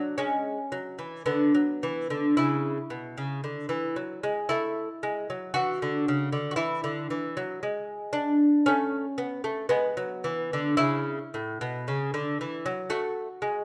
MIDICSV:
0, 0, Header, 1, 2, 480
1, 0, Start_track
1, 0, Key_signature, 3, "major"
1, 0, Tempo, 1092896
1, 72, Time_signature, 4, 2, 24, 8
1, 1513, Tempo, 1045296
1, 4393, Tempo, 1079137
1, 5353, Tempo, 1032702
1, 6175, End_track
2, 0, Start_track
2, 0, Title_t, "Lute"
2, 0, Program_c, 0, 24
2, 0, Note_on_c, 0, 54, 57
2, 0, Note_on_c, 0, 62, 67
2, 65, Note_off_c, 0, 62, 0
2, 70, Note_off_c, 0, 54, 0
2, 78, Note_on_c, 0, 61, 68
2, 82, Note_on_c, 0, 56, 53
2, 248, Note_off_c, 0, 56, 0
2, 316, Note_on_c, 0, 54, 54
2, 424, Note_off_c, 0, 54, 0
2, 433, Note_on_c, 0, 52, 47
2, 531, Note_off_c, 0, 61, 0
2, 543, Note_off_c, 0, 52, 0
2, 552, Note_on_c, 0, 50, 52
2, 552, Note_on_c, 0, 59, 60
2, 665, Note_off_c, 0, 50, 0
2, 679, Note_on_c, 0, 54, 48
2, 792, Note_off_c, 0, 54, 0
2, 804, Note_on_c, 0, 52, 58
2, 917, Note_off_c, 0, 52, 0
2, 924, Note_on_c, 0, 50, 52
2, 1025, Note_off_c, 0, 59, 0
2, 1037, Note_off_c, 0, 50, 0
2, 1041, Note_on_c, 0, 64, 73
2, 1047, Note_on_c, 0, 49, 52
2, 1216, Note_off_c, 0, 49, 0
2, 1275, Note_on_c, 0, 47, 49
2, 1388, Note_off_c, 0, 47, 0
2, 1395, Note_on_c, 0, 49, 54
2, 1506, Note_off_c, 0, 49, 0
2, 1510, Note_on_c, 0, 50, 48
2, 1624, Note_off_c, 0, 50, 0
2, 1626, Note_on_c, 0, 52, 54
2, 1745, Note_off_c, 0, 52, 0
2, 1751, Note_on_c, 0, 54, 50
2, 1868, Note_off_c, 0, 54, 0
2, 1876, Note_on_c, 0, 56, 61
2, 1979, Note_off_c, 0, 64, 0
2, 1990, Note_off_c, 0, 56, 0
2, 1993, Note_on_c, 0, 64, 72
2, 1999, Note_on_c, 0, 57, 60
2, 2171, Note_off_c, 0, 57, 0
2, 2241, Note_on_c, 0, 56, 58
2, 2353, Note_off_c, 0, 56, 0
2, 2364, Note_on_c, 0, 54, 52
2, 2456, Note_off_c, 0, 64, 0
2, 2475, Note_off_c, 0, 54, 0
2, 2475, Note_on_c, 0, 66, 78
2, 2481, Note_on_c, 0, 52, 50
2, 2593, Note_off_c, 0, 52, 0
2, 2605, Note_on_c, 0, 50, 54
2, 2715, Note_off_c, 0, 50, 0
2, 2724, Note_on_c, 0, 49, 53
2, 2834, Note_off_c, 0, 49, 0
2, 2835, Note_on_c, 0, 50, 55
2, 2907, Note_off_c, 0, 66, 0
2, 2921, Note_on_c, 0, 66, 53
2, 2942, Note_off_c, 0, 66, 0
2, 2944, Note_on_c, 0, 64, 78
2, 2947, Note_off_c, 0, 50, 0
2, 2949, Note_on_c, 0, 52, 60
2, 3067, Note_off_c, 0, 52, 0
2, 3071, Note_on_c, 0, 50, 59
2, 3188, Note_off_c, 0, 50, 0
2, 3193, Note_on_c, 0, 52, 49
2, 3308, Note_off_c, 0, 52, 0
2, 3315, Note_on_c, 0, 54, 60
2, 3429, Note_off_c, 0, 54, 0
2, 3434, Note_on_c, 0, 56, 51
2, 3649, Note_off_c, 0, 64, 0
2, 3663, Note_on_c, 0, 62, 70
2, 3778, Note_off_c, 0, 56, 0
2, 3898, Note_off_c, 0, 62, 0
2, 3908, Note_on_c, 0, 61, 82
2, 3916, Note_on_c, 0, 57, 58
2, 4087, Note_off_c, 0, 57, 0
2, 4146, Note_on_c, 0, 59, 54
2, 4263, Note_off_c, 0, 59, 0
2, 4266, Note_on_c, 0, 57, 57
2, 4371, Note_off_c, 0, 61, 0
2, 4379, Note_off_c, 0, 57, 0
2, 4381, Note_on_c, 0, 59, 78
2, 4386, Note_on_c, 0, 56, 58
2, 4501, Note_off_c, 0, 56, 0
2, 4505, Note_on_c, 0, 54, 56
2, 4624, Note_off_c, 0, 54, 0
2, 4626, Note_on_c, 0, 52, 53
2, 4747, Note_off_c, 0, 52, 0
2, 4756, Note_on_c, 0, 50, 57
2, 4856, Note_off_c, 0, 59, 0
2, 4862, Note_on_c, 0, 64, 90
2, 4864, Note_off_c, 0, 50, 0
2, 4866, Note_on_c, 0, 49, 60
2, 5043, Note_off_c, 0, 49, 0
2, 5115, Note_on_c, 0, 45, 52
2, 5228, Note_off_c, 0, 45, 0
2, 5236, Note_on_c, 0, 47, 62
2, 5346, Note_off_c, 0, 47, 0
2, 5355, Note_on_c, 0, 49, 58
2, 5467, Note_off_c, 0, 49, 0
2, 5475, Note_on_c, 0, 50, 62
2, 5588, Note_off_c, 0, 50, 0
2, 5601, Note_on_c, 0, 52, 56
2, 5711, Note_off_c, 0, 52, 0
2, 5716, Note_on_c, 0, 54, 65
2, 5804, Note_off_c, 0, 64, 0
2, 5828, Note_off_c, 0, 54, 0
2, 5828, Note_on_c, 0, 57, 65
2, 5830, Note_on_c, 0, 66, 79
2, 6002, Note_off_c, 0, 57, 0
2, 6071, Note_on_c, 0, 56, 58
2, 6175, Note_off_c, 0, 56, 0
2, 6175, Note_off_c, 0, 66, 0
2, 6175, End_track
0, 0, End_of_file